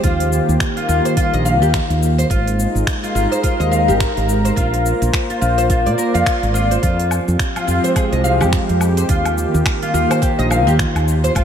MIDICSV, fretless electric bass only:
0, 0, Header, 1, 2, 480
1, 0, Start_track
1, 0, Tempo, 566038
1, 32, Time_signature, 4, 2, 24, 8
1, 9701, End_track
2, 0, Start_track
2, 0, Title_t, "Fretless electric bass"
2, 0, Program_c, 0, 35
2, 31, Note_on_c, 0, 39, 88
2, 329, Note_off_c, 0, 39, 0
2, 412, Note_on_c, 0, 39, 79
2, 475, Note_off_c, 0, 39, 0
2, 751, Note_on_c, 0, 39, 77
2, 840, Note_off_c, 0, 39, 0
2, 1133, Note_on_c, 0, 34, 87
2, 1371, Note_off_c, 0, 34, 0
2, 1371, Note_on_c, 0, 39, 93
2, 1507, Note_off_c, 0, 39, 0
2, 1611, Note_on_c, 0, 39, 84
2, 1892, Note_off_c, 0, 39, 0
2, 1953, Note_on_c, 0, 32, 92
2, 2250, Note_off_c, 0, 32, 0
2, 2332, Note_on_c, 0, 32, 78
2, 2394, Note_off_c, 0, 32, 0
2, 2671, Note_on_c, 0, 32, 79
2, 2760, Note_off_c, 0, 32, 0
2, 3051, Note_on_c, 0, 39, 87
2, 3294, Note_on_c, 0, 32, 84
2, 3307, Note_off_c, 0, 39, 0
2, 3429, Note_off_c, 0, 32, 0
2, 3537, Note_on_c, 0, 32, 84
2, 3815, Note_off_c, 0, 32, 0
2, 3874, Note_on_c, 0, 34, 88
2, 4170, Note_off_c, 0, 34, 0
2, 4254, Note_on_c, 0, 34, 83
2, 4316, Note_off_c, 0, 34, 0
2, 4593, Note_on_c, 0, 34, 80
2, 4973, Note_on_c, 0, 46, 79
2, 4986, Note_off_c, 0, 34, 0
2, 5035, Note_off_c, 0, 46, 0
2, 5213, Note_on_c, 0, 41, 91
2, 5275, Note_off_c, 0, 41, 0
2, 5451, Note_on_c, 0, 32, 89
2, 5732, Note_off_c, 0, 32, 0
2, 5790, Note_on_c, 0, 41, 97
2, 6088, Note_off_c, 0, 41, 0
2, 6173, Note_on_c, 0, 41, 80
2, 6235, Note_off_c, 0, 41, 0
2, 6512, Note_on_c, 0, 41, 80
2, 6601, Note_off_c, 0, 41, 0
2, 6888, Note_on_c, 0, 36, 92
2, 7130, Note_on_c, 0, 41, 93
2, 7143, Note_off_c, 0, 36, 0
2, 7267, Note_off_c, 0, 41, 0
2, 7374, Note_on_c, 0, 41, 86
2, 7654, Note_off_c, 0, 41, 0
2, 7709, Note_on_c, 0, 39, 89
2, 8008, Note_off_c, 0, 39, 0
2, 8092, Note_on_c, 0, 39, 82
2, 8155, Note_off_c, 0, 39, 0
2, 8428, Note_on_c, 0, 39, 83
2, 8518, Note_off_c, 0, 39, 0
2, 8809, Note_on_c, 0, 34, 87
2, 9049, Note_off_c, 0, 34, 0
2, 9049, Note_on_c, 0, 39, 93
2, 9186, Note_off_c, 0, 39, 0
2, 9287, Note_on_c, 0, 39, 89
2, 9570, Note_off_c, 0, 39, 0
2, 9631, Note_on_c, 0, 32, 89
2, 9701, Note_off_c, 0, 32, 0
2, 9701, End_track
0, 0, End_of_file